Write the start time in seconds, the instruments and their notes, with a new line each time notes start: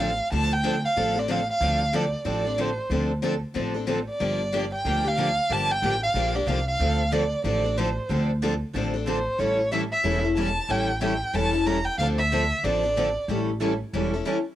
Already playing: upright bass A1, violin F5
0.00 steel-string acoustic guitar C4 D4 A4
0.32 upright bass D2, steel-string acoustic guitar D3 F3 C4 D4 A4, violin A5
0.53 violin G5
0.63 steel-string acoustic guitar D3 F3 C4 D4 A4
0.85 violin F5
0.97 upright bass A1, steel-string acoustic guitar D3 F3 C4 D4 A4
1.15 steel-string acoustic guitar C4 D4 A4, violin D5
1.28 steel-string acoustic guitar D3 F3 C4 D4 A4, violin F5
1.50 violin F5
1.60 upright bass D2, steel-string acoustic guitar D3 F3 C4 D4 A4
1.93 steel-string acoustic guitar D3 F3 C4 D4 A4, violin D5
2.25 upright bass A1, steel-string acoustic guitar D3 F3 C4 D4 A4, violin D5
2.45 steel-string acoustic guitar C4 D4 A4
2.58 steel-string acoustic guitar D3 F3 C4 D4 A4, violin C5
2.90 upright bass D2, steel-string acoustic guitar D3 F3 C4 D4 A4
3.22 steel-string acoustic guitar D3 F3 C4 D4 A4
3.54 upright bass A1, steel-string acoustic guitar D3 F3 C4 D4 A4
3.74 steel-string acoustic guitar C4 D4 A4
3.87 steel-string acoustic guitar D3 F3 C4 D4 A4
4.10 violin D5
4.20 upright bass G1, steel-string acoustic guitar D3 F3 A#3 D4 G4
4.52 steel-string acoustic guitar D3 F3 A#3 D4 G4
4.74 violin G5
4.85 upright bass D2, steel-string acoustic guitar D3 F3 A#3 D4 G4
5.04 steel-string acoustic guitar A#3 D4 G4, violin F5
5.17 steel-string acoustic guitar D3 F3 A#3 D4 G4
5.50 upright bass G1, steel-string acoustic guitar D3 F3 A#3 D4 G4, violin A5
5.71 violin G5
5.82 upright bass A1, steel-string acoustic guitar D3 F3 A#3 D4 G4
6.03 violin F5
6.14 upright bass A#1, steel-string acoustic guitar D3 F3 A#3 D4 G4
6.35 steel-string acoustic guitar A#3 D4 G4, violin D5
6.46 upright bass C2, steel-string acoustic guitar D3 F3 A#3 D4 G4, violin F5
6.68 violin F5
6.79 upright bass D2, steel-string acoustic guitar D3 F3 C4 D4 A4
7.12 steel-string acoustic guitar D3 F3 C4 D4 A4, violin D5
7.44 upright bass A1, steel-string acoustic guitar D3 F3 C4 D4 A4, violin D5
7.64 steel-string acoustic guitar C4 D4 A4
7.78 steel-string acoustic guitar D3 F3 C4 D4 A4, violin C5
8.09 upright bass D2, steel-string acoustic guitar D3 F3 C4 D4 A4
8.42 steel-string acoustic guitar D3 F3 C4 D4 A4
8.74 upright bass A1, steel-string acoustic guitar D3 F3 C4 D4 A4
8.94 steel-string acoustic guitar C4 D4 A4
9.07 steel-string acoustic guitar D3 F3 C4 D4 A4, violin C5
9.39 upright bass A1, steel-string acoustic guitar E3 G3 C#4 E4 A4, violin C#5
9.72 steel-string acoustic guitar E3 G3 C#4 E4 A4, violin E5
9.92 violin E5
10.04 upright bass E1, steel-string acoustic guitar E3 G3 C#4 E4 A4
10.24 steel-string acoustic guitar C#4 E4 A4
10.37 steel-string acoustic guitar E3 G3 C#4 E4 A4, violin A5
10.69 upright bass A1, steel-string acoustic guitar E3 G3 C#4 E4 A4, violin G5
11.01 steel-string acoustic guitar E3 G3 C#4 E4 A4, violin G5
11.33 upright bass E1, steel-string acoustic guitar E3 G3 C#4 E4 A4, violin A5
11.53 steel-string acoustic guitar C#4 E4 A4
11.66 steel-string acoustic guitar E3 G3 C#4 E4 A4, violin A#5
11.85 violin G5
11.98 upright bass D2, steel-string acoustic guitar D3 F3 C4 D4 A4, violin F5
12.18 violin E5
12.32 steel-string acoustic guitar D3 F3 C4 D4 A4
12.63 upright bass A1, steel-string acoustic guitar D3 F3 C4 D4 A4, violin D5
12.83 steel-string acoustic guitar C4 D4 A4
12.97 steel-string acoustic guitar D3 F3 C4 D4 A4
13.28 upright bass A1, steel-string acoustic guitar E3 G3 C#4 E4 A4
13.61 steel-string acoustic guitar E3 G3 C#4 E4 A4
13.93 upright bass E1, steel-string acoustic guitar E3 G3 C#4 E4 A4
14.13 steel-string acoustic guitar C#4 E4 A4
14.25 steel-string acoustic guitar E3 G3 C#4 E4 A4